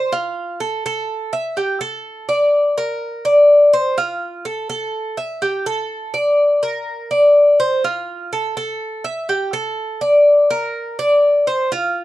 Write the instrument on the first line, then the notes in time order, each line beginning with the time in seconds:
cuban tres
Already playing: C5
0.12 F4
0.60 A4
0.86 A4
1.33 E5
1.57 G4
1.81 A4
2.29 D5
2.78 A#4
3.25 D5
3.73 C5
3.98 F4
4.45 A4
4.70 A4
5.17 E5
5.42 G4
5.66 A4
6.14 D5
6.63 A#4
7.11 D5
7.60 C5
7.84 F4
8.33 A4
8.57 A4
9.04 E5
9.29 G4
9.53 A4
10.01 D5
10.50 A#4
10.99 D5
11.47 C5
11.72 F4